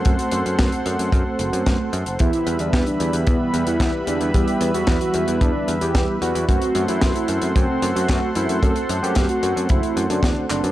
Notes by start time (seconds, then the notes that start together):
Already playing: A4 C5 F#5 C6
0.05 F#2 A3 C4 F#4 C5, kick, closed hi-hat
0.19 closed hi-hat
0.32 F#2, closed hi-hat
0.46 F#2, closed hi-hat
0.59 F#2, kick, snare, closed hi-hat
0.72 closed hi-hat
0.86 F#2, closed hi-hat
0.99 F#2, closed hi-hat
1.12 F#2, kick, closed hi-hat
1.39 F#1, closed hi-hat
1.53 F#2, closed hi-hat
1.66 F#2, kick, snare, closed hi-hat
1.93 F#2, closed hi-hat
2.06 F#1, closed hi-hat
2.19 E2 E3 G3 B3 E4 G4 B4 E5 B5, kick, closed hi-hat
2.33 closed hi-hat
2.47 E2, closed hi-hat
2.59 E2 D4, closed hi-hat
2.73 E2, kick, snare, closed hi-hat
2.87 D4, closed hi-hat
3.00 E2, closed hi-hat
3.13 E2, closed hi-hat
3.27 E2 B3, kick, closed hi-hat
3.54 E2 E3 B3 E4 G4 F#5, closed hi-hat
3.67 E2 E4, closed hi-hat
3.80 E2, kick, snare, closed hi-hat
4.07 E2 D4, closed hi-hat
4.21 E2, closed hi-hat
4.34 E2 E3 G3 B3 E4 G4 E5, kick, closed hi-hat
4.48 closed hi-hat
4.61 E2, closed hi-hat
4.74 E2 F#4, closed hi-hat
4.87 E2, kick, snare, closed hi-hat
5.01 F#4, closed hi-hat
5.14 E2, closed hi-hat
5.28 E2, closed hi-hat
5.41 E2 D4, kick, closed hi-hat
5.68 E2, closed hi-hat
5.81 E2 G4, closed hi-hat
5.95 E2, kick, snare, closed hi-hat
6.22 E2 B3 E4 F#4 G4 D5, closed hi-hat
6.35 E2, closed hi-hat
6.48 F#2 A3 C4 F#4 A4 C5 F#5 C6, kick, closed hi-hat
6.62 closed hi-hat
6.75 F#2, closed hi-hat
6.88 F#2 E4, closed hi-hat
7.01 F#2, kick, snare, closed hi-hat
7.15 E4, closed hi-hat
7.28 F#2, closed hi-hat
7.42 F#2, closed hi-hat
7.55 F#2 C4, kick, closed hi-hat
7.82 F#2 A3 C4 F#4 E5, closed hi-hat
7.96 F#2 F#4, closed hi-hat
8.08 F#2, kick, snare, closed hi-hat
8.35 F#2 E4, closed hi-hat
8.49 F#2, closed hi-hat
8.63 F#2 A3 C4 F#4 A4 C5, kick, closed hi-hat
8.76 closed hi-hat
8.89 F#2, closed hi-hat
9.03 F#2 G4, closed hi-hat
9.15 F#2, kick, snare, closed hi-hat
9.29 F#4, closed hi-hat
9.43 F#2, closed hi-hat
9.56 F#2, closed hi-hat
9.69 F#1 E4, kick, closed hi-hat
9.83 closed hi-hat
9.97 F#2, closed hi-hat
10.10 F#2 D4, closed hi-hat
10.23 E2, kick, snare, closed hi-hat
10.50 F#1 A3 C4 D4 F#4 B4, clap, closed hi-hat
10.64 F#2, closed hi-hat